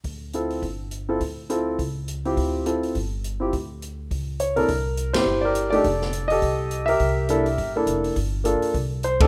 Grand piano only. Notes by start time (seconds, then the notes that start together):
0.34 C4 E4 F4 A4
1.09 C4 E4 F4 A4
1.50 C4 E4 F4 A4
2.25 C4 E4 F4 G4
2.66 C4 E4 F4 A4
3.40 C4 E4 F4 G4
4.40 C#5
4.56 C3 A#3 D4 E4 A4 A#4
5.13 E4 G4 C5
5.41 G4 A#4 D5
5.70 A3 D4 D#4 G4 D5
5.75 A4
6.28 G4 D#5
6.32 A4
6.86 G4 A#4 E5
7.29 A#3 D4 E4 A4
7.76 A#3 D4 E4 A4
8.44 A#3 D4 F4 A4
9.04 C5
9.20 A3 C4 D4 D#4 G4 A4